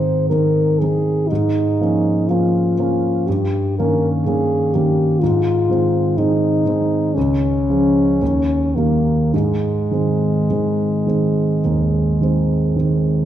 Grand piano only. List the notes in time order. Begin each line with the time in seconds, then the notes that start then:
Already playing: G#2 D#3 C4 D#4
0.31 D#3 C4 D#4
0.82 D#3 C4 D#4
1.31 G#2
1.81 F3 A#3 C#4
2.30 F3 A#3 C#4
2.78 F3 A#3 C#4
3.29 G2
3.80 D#3 A#3 C#4
4.27 D#3 A#3 C#4
4.75 D#3 A#3 C#4
5.23 G#2
5.69 D#3 G#3 C4
6.18 D#3 G#3 C4
6.66 D#3 G#3 C4
7.17 C#2
7.70 F3 G#3 C#4
8.22 D#2
8.77 D#3 G3 A#3
9.34 G#2
9.91 D#3 G#3 C4
10.50 D#3 G#3 C4
11.06 D#3 G#3 C4
11.65 D#2
12.21 D#3 G#3 C4
12.76 D#3 G#3 C4